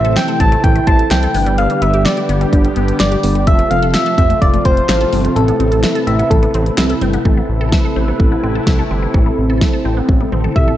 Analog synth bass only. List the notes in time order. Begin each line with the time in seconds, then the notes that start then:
Already playing: A1
0.40 A1
0.64 A1
0.87 A1
1.11 C2
1.34 G1
1.82 G1
2.29 G1
2.53 G1
2.76 G1
3.00 G1
3.24 G1
3.47 F1
3.71 F1
4.18 F1
4.42 F1
4.65 F1
4.89 A1
5.13 G1
5.36 A1
5.60 A1
6.07 A1
6.31 A1
6.54 A1
6.78 C2
7.02 G1
7.25 A1
7.49 A1
7.96 A1
8.20 A1
8.43 A1
8.67 C2
8.91 G1
9.14 A1
9.38 A1
9.85 A1
10.09 A1
10.32 A1
10.56 C2